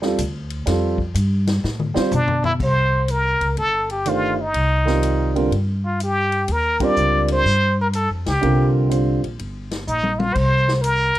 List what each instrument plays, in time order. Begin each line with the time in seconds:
Already playing: upright bass E2
0.02 grand piano G3 C4 F4 A4, snare
0.18 upright bass D2, hi-hat pedal, ride
0.50 ride
0.66 upright bass F2, grand piano G3 C4 F4 A4, snare, ride
0.98 kick
1.14 upright bass G2, hi-hat pedal, ride
1.47 snare, ride
1.64 upright bass A2, snare
1.80 mid tom
1.94 grand piano G3 C4 F4 C5, muted upright bass stroke, snare
2.11 upright bass B2, muted trumpet D4, floor tom, hi-hat pedal
2.28 floor tom
2.44 muted trumpet E4, floor tom
2.60 upright bass C2, muted trumpet C5, kick, crash
3.08 muted trumpet A#4, hi-hat pedal, ride
3.41 upright bass C#2, ride
3.57 upright bass G1, muted trumpet A4, ride
3.90 muted trumpet G4, ride
4.05 grand piano D#3 A3 D4 G4 C5, muted trumpet F4, hi-hat pedal, ride
4.41 muted trumpet D#4
4.54 upright bass C2, ride
4.85 grand piano D#3 G3 C4 F4 A#4, snare
5.03 hi-hat pedal, ride
5.35 grand piano D3 G3 C4 F4 A#4, ride
5.51 upright bass G2, ride
5.86 muted trumpet F4
6.00 muted trumpet G4, hi-hat pedal, ride
6.32 ride
6.48 upright bass D#2, ride
6.52 muted trumpet A#4
6.80 grand piano G3 C4 D4 F4 A#4, muted trumpet D5, kick, ride
6.96 upright bass C#2, hi-hat pedal
7.28 ride
7.32 muted trumpet C5
7.45 upright bass G2
7.81 muted trumpet A#4
7.93 muted trumpet A4, hi-hat pedal, ride
8.10 upright bass F2
8.26 upright bass C#2, muted trumpet G4, snare, ride
8.41 upright bass C2, grand piano D3 G3 C4 F4 A#4, ride
8.89 grand piano D3 G3 C4 F4 C5, hi-hat pedal, ride
9.23 upright bass A#1, ride
9.39 upright bass G1, ride
9.71 snare, ride
9.87 upright bass A#1, muted trumpet D#4, hi-hat pedal
10.03 high tom
10.19 muted trumpet F4, high tom
10.34 upright bass C2, muted trumpet C5, kick, crash
10.68 snare
10.81 muted trumpet A#4, hi-hat pedal, ride
11.15 ride